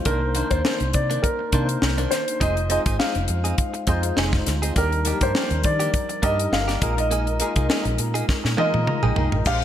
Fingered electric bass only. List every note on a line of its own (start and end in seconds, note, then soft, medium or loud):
0.06 0.41 C2 medium
0.51 0.62 D#2 medium
0.81 0.91 C2 medium
0.94 1.17 C3 medium
1.53 1.76 C3 medium
1.82 2.05 C2 medium
2.41 2.77 F1 medium
2.86 2.97 G#1 medium
3.16 3.26 F1 medium
3.29 3.52 F2 medium
3.88 4.11 F2 medium
4.17 4.40 F1 medium
4.47 4.70 D2 medium
4.76 5.12 D#2 loud
5.21 5.32 G2 medium
5.51 5.61 D#2 medium
5.64 5.87 D#3 medium
6.23 6.46 G2 medium
6.52 6.75 G1 medium
6.82 7.40 A#1 medium
7.56 7.67 C2 medium
7.85 7.96 A#1 medium
7.99 8.22 A#2 medium
8.45 8.55 A#2 medium
8.74 8.85 A#2 medium
9.04 9.14 A#1 medium
9.17 9.29 C2 medium
9.33 9.43 A1 medium
9.46 9.64 A#1 loud